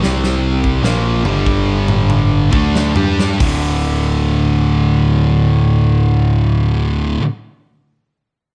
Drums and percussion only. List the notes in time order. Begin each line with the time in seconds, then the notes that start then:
0.03 snare
0.24 snare
0.64 kick
0.84 snare
1.25 mid tom
1.46 kick
1.88 mid tom
2.10 mid tom
2.53 kick
2.75 snare
2.96 floor tom
3.19 snare
3.40 kick, open hi-hat